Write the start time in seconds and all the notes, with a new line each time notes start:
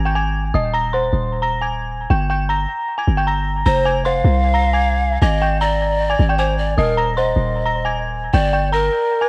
Already playing: G#1
0.06 G5 G6
0.15 G#5 G#6
0.54 D#1 D#5 D#6
0.74 A#5 A#6
0.93 C5 C6
1.13 D#1
1.42 A#5 A#6
1.61 G#5 G#6
2.10 G1 G5 G6
2.30 G5 G6
2.49 A#5 A#6
2.98 G#5 G#6
3.07 G1
3.17 G5 G6
3.27 A#5 A#6
3.66 F1 C5 A#5 A#6
3.85 G#5 G#6
4.05 C5 F5 C6
4.24 C2
4.54 A#5 A#6
4.73 G#5 G#6
5.22 G#1 D#5 G#5 G#6
5.42 G5 G6
5.61 D5 A#5 A#6
6.10 G#5 G#6
6.19 G#1
6.29 G5 G6
6.38 C5 G#5 G#6
6.58 D5
6.78 D#1 A#4 D#5 D#6
6.97 A#5 A#6
7.17 C5 D#5 C6
7.36 D#1
7.66 A#5 A#6
7.85 G#5 G#6
8.33 G1 D5 G5 G6
8.53 G5 G6
8.72 A#4 A#5 A#6
9.21 G#5 G#6